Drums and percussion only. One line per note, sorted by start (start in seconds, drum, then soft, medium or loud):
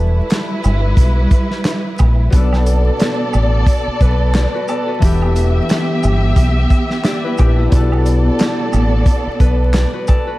0.30 snare loud
0.30 clap medium
0.30 closed hi-hat medium
0.30 shaker medium
0.64 high woodblock medium
0.64 shaker medium
0.64 shaker soft
0.97 kick loud
0.97 closed hi-hat medium
0.97 shaker medium
1.31 kick loud
1.31 closed hi-hat medium
1.31 shaker medium
1.51 snare soft
1.65 snare loud
1.65 clap medium
1.65 closed hi-hat medium
1.65 shaker medium
1.98 kick loud
1.98 high woodblock medium
1.98 shaker medium
2.32 kick loud
2.32 closed hi-hat loud
2.32 shaker medium
2.53 snare soft
2.53 high woodblock medium
2.66 closed hi-hat medium
2.66 shaker medium
2.66 shaker soft
3.00 snare loud
3.00 clap medium
3.00 closed hi-hat medium
3.00 shaker medium
3.33 high woodblock medium
3.33 shaker soft
3.33 shaker medium
3.67 kick loud
3.67 closed hi-hat medium
3.67 shaker medium
4.01 kick loud
4.01 shaker medium
4.35 snare loud
4.35 clap medium
4.35 closed hi-hat medium
4.35 shaker medium
4.68 high woodblock medium
4.68 shaker medium
5.02 kick loud
5.02 closed hi-hat loud
5.02 shaker medium
5.22 high woodblock medium
5.36 closed hi-hat medium
5.36 shaker medium
5.36 shaker soft
5.69 snare loud
5.69 clap medium
5.69 closed hi-hat medium
5.69 shaker medium
6.03 high woodblock medium
6.03 shaker medium
6.03 shaker soft
6.36 kick loud
6.36 closed hi-hat medium
6.36 shaker medium
6.70 kick loud
6.70 shaker medium
6.90 snare soft
7.04 snare loud
7.04 clap medium
7.04 closed hi-hat medium
7.04 shaker medium
7.38 kick loud
7.38 high woodblock medium
7.38 shaker medium
7.72 kick loud
7.72 closed hi-hat loud
7.72 shaker medium
7.92 high woodblock medium
8.06 closed hi-hat medium
8.06 shaker medium
8.06 shaker soft
8.39 snare loud
8.39 clap medium
8.39 closed hi-hat medium
8.39 shaker medium
8.73 high woodblock medium
8.73 shaker medium
8.73 shaker soft
9.06 kick loud
9.06 closed hi-hat medium
9.06 shaker medium
9.40 kick loud
9.40 closed hi-hat medium
9.40 shaker medium
9.74 snare loud
9.74 clap medium
9.74 closed hi-hat medium
9.74 shaker medium
10.07 kick loud
10.07 high woodblock medium
10.07 shaker medium